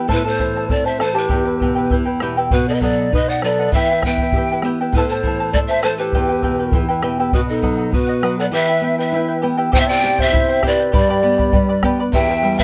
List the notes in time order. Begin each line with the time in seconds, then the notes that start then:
0.07 A2 E4 A4 B4 C5 E5 A5, bombo low
0.24 E4 A4 C5 A5
0.39 E3 E4 C5 E5 A5, bombo low
0.57 E4 C5 A5
0.69 C4 E4 A4 C5 D5 E5 A5, bombo low
0.85 E4 C5 E5 A5
0.99 E3 E4 A4 C5 E5 A5, bombo rim
1.14 E4 G4 A4 B4 C5 E5 A5
1.28 E2 E4 G4 B4 E5 G5, bombo low
1.44 E4 B4 G5
1.60 B2 E4 B4 E5 G5, bombo low
1.75 E4 B4 G5
1.90 E3 E4 B4 E5 G5, bombo low
2.05 E4 B4 G5
2.20 B2 E4 G4 B4 E5 G5, bombo rim
2.37 E4 G4 B4 E5 G5
2.51 B2 F#4 B4 D#5 F#5, bombo low
2.67 A4 D5 D#5 F#5
2.74 B4 D#5
2.80 F#3 A4 B4 D5 D#5 F#5, bombo low
2.98 D#5 F#5
3.12 D#4 B4 D#5 F#5, bombo low
3.29 D5 D#5 F#5
3.42 F#3 A4 B4 D5 D#5 F#5, bombo rim
3.59 B4 D#5 F#5
3.72 E3 E4 G4 B4 E5, bombo low
3.76 B4 G5
3.91 E4 B4 G5
4.02 B3 E5 G5, bombo rim, bombo low
4.06 E4 B4 G5
4.18 G5, bombo low
4.22 E4 B4
4.32 G4 E5, bombo low
4.36 E4 B4 G5
4.52 E4 B4 G5
4.62 B3 E4 G4 B4 E5 G5, bombo rim
4.81 E4 G4 B4 E5 G5
4.92 A2 E4 B4, bombo low
4.97 E4 A4 C5 E5 A5
5.08 A4 C5 A5
5.12 E4 C5
5.23 E3 E5, bombo low
5.27 E4 C5 A5
5.40 E4 C5 A5
5.52 A3 E4 A4 D5 E5, bombo low
5.57 C5 A5
5.67 C5 E5 A5
5.72 E4 C5
5.82 E3 E4 A4 C5 E5 A5, bombo rim
5.97 E4 G4 A4 B4 C5 E5 A5
6.13 E2 E4 G4 B4 E5 G5, bombo low
6.29 E4 B4 G5
6.42 B2 E4 B4 E5 G5, bombo low
6.59 E4 B4 G5
6.72 E3 E4 B4 E5 G5, bombo low
6.88 E4 B4 G5
7.02 B2 E4 G4 B4 E5 G5, bombo rim
7.19 E4 G4 B4 E5 G5
7.33 B2 F#4 B4 D#5 F#5, bombo low
7.48 D#4 A4 D#5 F#5
7.62 F#3 B4 D#5 F#5, bombo low
7.77 D#5 F#5
7.91 B3 F#4 B4 D#5 F#5, bombo low
8.07 D#5 F#5
8.22 F#3 B4 D#5 F#5, bombo rim
8.38 A4 B4 D5 D#5 F#5
8.51 E3 E4 G4 B4 E5 G5
8.69 E4 B4 G5
8.81 B3 E4 B4 E5 G5
8.98 E4 B4 E5 G5
9.12 E4 B4 E5 G5
9.28 E4 B4 G5
9.42 B3 E4 G4 B4 E5 G5
9.57 E4 G4 B4 E5 G5
9.72 C3 E4 G4 C5 E5 G5, bombo low
9.80 C5 E5
9.87 E4 G4 C5 D5 E5 G5
10.03 E4 G4 C5 E5 G5
10.18 E4 C5 E5 G5, bombo low
10.32 E4 C5 E5 G5, bombo low
10.48 E4 C5 G5
10.63 E4 G4 B4 C5 D5 E5 G5, bombo rim, bombo low
10.79 E4 C5 G5
10.92 G2 G4 B4 D5 G5 B5, bombo low
10.97 D5
11.09 G4 B4 D5 G5 B5
11.23 B3 B4 D5 G5 B5
11.38 B4 D5 B5, bombo low
11.52 G3 B4 D5 G5 B5, bombo low
11.69 B4 D5 B5
11.83 B3 G4 B4 D5 G5 B5, bombo rim, bombo low
12.00 B4 D5 B5
12.12 E2 E4 G4 B4 E5 G5, bombo low
12.29 E4 G4 B4 E5 G5
12.43 G3 E4 B4 E5 G5
12.58 E4 B4 E5 G5, bombo low